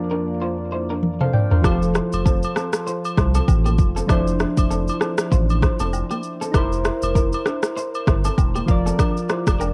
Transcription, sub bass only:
1.64 F1
2.13 F1
3.17 C2
3.48 A1
3.79 F1
4.09 F1
4.57 F1
5.32 A1
5.80 F1
6.54 F1
7.02 F1
8.07 G1
8.38 E1
8.68 F1
9.47 F1

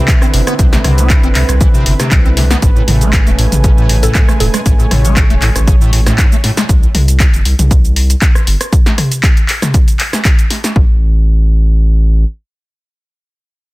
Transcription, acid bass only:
0.08 B2
0.22 C4
0.34 C3
0.47 B3
0.59 C3
0.73 C3
0.84 C3
0.98 C4
1.10 B2
1.23 C4
1.35 C3
1.49 C2
1.61 E3
1.74 C3
1.86 C3
2.00 C3
2.12 B2
2.25 C4
2.37 C3
2.50 B3
2.62 A2
2.76 A2
2.88 A2
3.01 A3
3.13 G#2
3.27 A3
3.39 A2
3.52 A1
3.64 C#3
3.78 A2
3.89 A2
4.03 A2
4.15 G#2
4.28 A3
4.40 A2
4.54 G#3
4.66 A2
4.79 A2
4.91 A2
5.05 A3
5.16 G#2
5.30 A3
5.42 A2
5.55 A1
5.67 C#3
5.81 A2
5.93 A2
6.06 A2
6.18 G#2
6.32 A3
6.44 A2
6.57 G#3

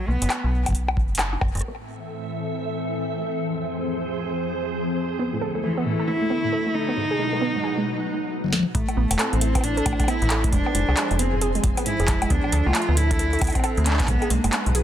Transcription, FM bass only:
0.08 B1
0.22 F#1
0.44 B1
0.97 F#1
1.41 F#1
1.55 F#1
8.75 A1
8.97 A1
9.11 E1
9.33 A1
9.86 A1
10.22 A1
10.53 F1
10.75 F1
10.89 C2
11.11 F1
11.64 F1
12.00 F1
12.30 D2
12.53 D2
12.66 C2
12.89 D2
13.41 D2
13.77 D2
14.08 B1
14.30 B1
14.44 F#1
14.66 B1

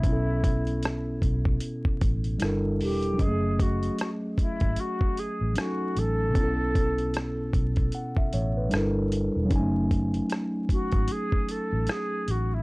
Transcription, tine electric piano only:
0.00 B2 B3
0.05 C#4 E4
0.12 A4
2.38 G3 D4 E4
2.44 A4 A#4
3.14 F#3 C#4
3.21 G#4 D#5
3.28 A3
5.54 F#3 C#4 D#4
5.59 A4 G#5
6.30 B2 B3
6.37 C#4 E4
6.44 A4
7.95 F#5
8.18 E5
8.34 C#5
8.57 B4
8.69 G3 D4 E4
8.75 A4 A#4
9.45 F#3 C#4
9.52 D#4 G#5
9.59 A3

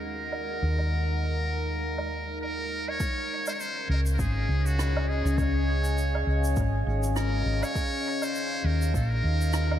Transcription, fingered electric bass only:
Already playing: D#2
0.63 D#2
3.89 C#2
4.19 G#1
4.49 C#2
5.25 C#2
6.27 C#2
6.57 G#1
6.87 G#1
7.46 G#1
8.64 D#2
8.94 A#1
9.24 D#2

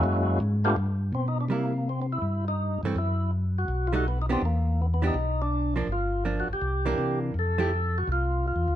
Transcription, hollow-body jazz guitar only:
1.50 G3 A#3 E4
2.85 E3 A3 C4
3.93 G3 A3 D#4
4.29 E3 B3 D4 G4
5.02 E3 B3 D4 G4
5.76 F3 A#3 D4
6.25 F3 A#3 D4
6.86 E3 A#3 D4
7.58 F3 A3 E4 G4

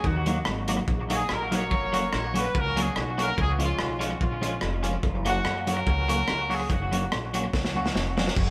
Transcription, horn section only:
0.06 A#3 D#4 F#4
1.14 G#4
1.33 A#4
1.53 F#4 A#4 C#5
2.14 C#5
2.38 B4
2.57 C#4 F#4 A#4
2.80 G#4
3.00 F#4
3.22 A#4
3.41 C#4 F4 G#4
3.63 G#3 C#4 F4
4.04 F#4
4.21 G#3 C#4 F4
5.29 A#3 C#4 F#4
5.69 C#4 F#4 A#4
6.54 G#4
6.71 A#3 C#4 F#4

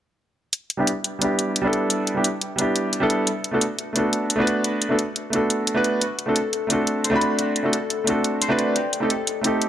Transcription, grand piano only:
0.77 G3 B3 D4 E4 G4
1.19 G3 B3 D4
1.23 E4 G4
1.62 G3 B3 D4
1.66 E4 A4
2.14 G3 B3 D4 E4 G4
2.56 G3 B3 D4
2.60 E4 G4
3.00 G3 B3 D4 E4 A4
3.51 A3 B3 D4 F#4 A4
3.93 A3 B3 D4
3.97 F#4 A4
4.36 A3 B3 D4
4.40 F#4 B4
4.89 A3 B3 D4 F#4 A4
5.30 A3 B3 D4
5.35 F#4 A4
5.75 A3 B3 D4 F#4 B4
6.26 A3 C4 D4 F#4 A4
6.67 A3 C4 D4
6.71 F#4 A4
7.10 A3 C4 D4
7.14 F#4 B5
7.63 A3 C4 D4 F#4 A4
8.04 A3 C4 D4
8.09 F#4 A4
8.49 A3 C4 D4 F#4 B4
9.00 A3 C4 D#4 G4 A4
9.41 A3 C4 D#4
9.46 G4 A4

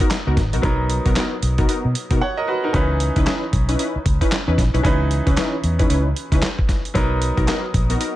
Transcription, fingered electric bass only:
0.27 C#2
0.37 G#1
0.53 A#1
0.63 B1
1.06 B1
1.42 B1
1.85 B2
2.11 B2
2.74 C#2
3.16 C#2
3.53 B1
3.96 muted fingered electric bass stroke
4.06 C#2
4.48 E2
4.58 A#1
4.74 B1
4.85 C#2
5.27 C#2
5.64 E2
5.90 C#2
6.32 C#2
6.95 B1
7.37 B1
7.74 A#1

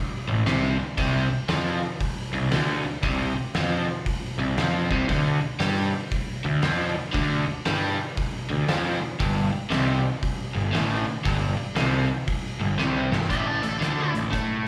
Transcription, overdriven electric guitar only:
0.29 A2
0.47 C3
0.80 muted overdriven electric guitar stroke
0.98 C3
1.31 muted overdriven electric guitar stroke
1.50 F3
2.34 C3
2.53 D3
2.86 muted overdriven electric guitar stroke
3.04 C3
3.38 muted overdriven electric guitar stroke
3.56 F3
4.40 C3
4.59 F3
4.91 C3
5.09 D3
5.42 muted overdriven electric guitar stroke
5.60 G3
6.45 D3
6.63 F3
6.96 muted overdriven electric guitar stroke
7.13 D3
7.47 muted overdriven electric guitar stroke
7.66 G3
8.50 D3
8.69 F3
9.02 muted overdriven electric guitar stroke
9.20 G2
9.53 muted overdriven electric guitar stroke
9.71 C3
10.55 G2
10.73 A2
11.06 muted overdriven electric guitar stroke
11.25 G2
11.58 muted overdriven electric guitar stroke
11.77 C3
12.61 G2
12.79 C3
13.12 G2
13.29 A2
13.63 A2
13.80 D3
14.13 A2
14.32 A3

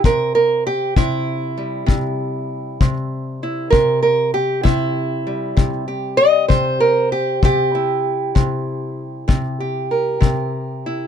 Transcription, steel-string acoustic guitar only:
0.05 C3 A#4
0.35 A#4
0.67 G4
0.97 C3 E4
1.58 G3
1.86 C3
2.81 C3
3.43 E4
3.70 C3 A#4
4.03 A#4
4.34 G4
4.63 C3 E4
5.27 G3
5.57 C3
5.88 G4
6.17 D#5
6.48 C3 C5
6.80 A#4
7.12 G4
7.43 C3 G4
7.75 E4
8.35 C3
9.28 C3
9.60 G4
9.91 A#4
10.21 C3
10.86 E4

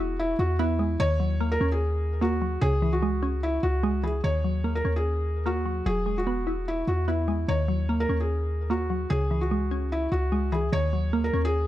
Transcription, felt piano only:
Already playing: F#4
0.19 E4
0.39 F#4
0.59 E4
1.00 C#5
1.52 A#4
1.72 G#4
2.22 F#4
2.61 G#4
2.93 F#4
3.43 E4
3.63 F#4
4.04 G#4
4.24 C#5
4.75 A#4
4.96 G#4
5.46 F#4
5.86 G#4
6.18 F#4
6.68 E4
6.88 F#4
7.08 E4
7.49 C#5
8.00 A#4
8.20 G#4
8.71 F#4
9.10 G#4
9.41 F#4
9.92 E4
10.12 F#4
10.52 G#4
10.73 C#5
11.24 A#4
11.45 G#4

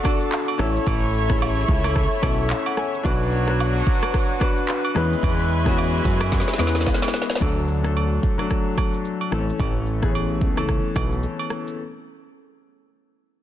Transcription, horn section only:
Already playing: A3 F#4 D5
0.59 A3 E4 C#5
3.05 F#3 D4 C#5
4.96 G#3 E4 B4

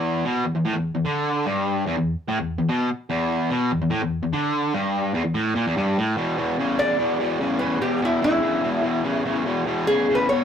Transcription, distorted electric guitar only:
Already playing: E2
0.25 B2
0.45 E2
0.55 E2
0.65 A2
0.73 E2
0.95 E2
1.05 D3
1.46 G2
1.86 E2
1.97 E2
2.28 A2
2.39 E2
2.59 E2
2.69 B2
3.10 E2
3.50 B2
3.71 E2
3.82 E2
3.90 A2
4.02 E2
4.23 E2
4.33 D3
4.74 G2
5.14 E2
5.25 E2
5.34 A2
5.55 A#2
5.67 E2
5.77 G2
5.98 A2
6.17 E2 B2
6.37 E2 B2
6.59 E2 C#3
6.78 E2 C#3
6.99 E2 B2
7.19 E2 B2
7.40 E2 C#3
7.60 E2 C#3
7.80 E2 B2
8.01 E2 B2
8.21 E2 C#3
8.41 E2 C#3
8.63 E2 B2
8.83 E2 B2
9.04 E2 C#3
9.25 E2 C#3
9.45 E2 B2
9.65 E2 B2
9.88 E2 C#3
10.09 E2 C#3
10.31 E2 B2

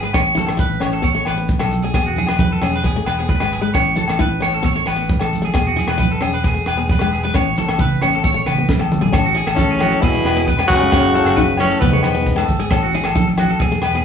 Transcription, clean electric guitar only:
0.04 B4
0.14 C#5
0.37 A4
0.60 B4
0.82 C#5
0.93 A4
1.04 C#5
1.16 C#5
1.27 B4
1.60 A4
1.83 G#4
1.95 G#4
2.06 F#4
2.18 G#4
2.29 B4
2.40 B4
2.52 A4
2.63 G#4
2.75 B4
2.86 G#4
3.06 B4
3.19 G#4
3.29 B4
3.41 B4
3.53 G#4
3.62 B4
3.74 C#5
3.97 A4
4.10 A4
4.21 B4
4.42 C#5
4.54 A4
4.66 C#5
4.76 C#5
4.88 B4
5.22 A4
5.45 G#4
5.55 G#4
5.67 F#4
5.78 G#4
5.89 B4
6.00 B4
6.11 A4
6.22 G#4
6.34 B4
6.47 G#4
6.67 B4
6.78 G#4
6.91 B4
7.02 B4
7.13 G#4
7.24 B4
7.35 C#5
7.58 A4
7.70 A4
7.80 B4
8.02 C#5
8.15 A4
8.25 C#5
8.36 C#5
8.46 B4
8.79 A4
9.02 G#4
9.14 A4
9.24 F#4
9.36 G#4
9.48 A4
9.59 A4
9.71 G#4
9.81 F#4
9.92 A4
10.04 G#4
10.26 B4
10.37 G#4
10.48 B4
10.58 B4
10.69 G#4
10.81 B4
10.92 C#5
11.15 A4
11.26 A4
11.36 B4
11.60 C#5
11.71 A4
11.81 B4
11.93 C#5
12.04 B4
12.38 A4
12.60 G#4
12.71 A4
12.83 F#4
12.94 G#4
13.06 A4
13.16 A4
13.28 muted clean electric guitar stroke
13.39 F#4
13.50 A4
13.61 G#4
13.84 B4
13.96 G#4

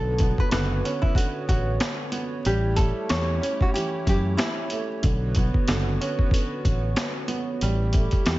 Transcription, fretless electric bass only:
Already playing: B1
0.52 F#1
1.49 A1
2.46 A1
3.10 E2
4.07 F#2
5.04 B1
5.68 F#1
6.65 A1
7.62 A1
8.26 E2

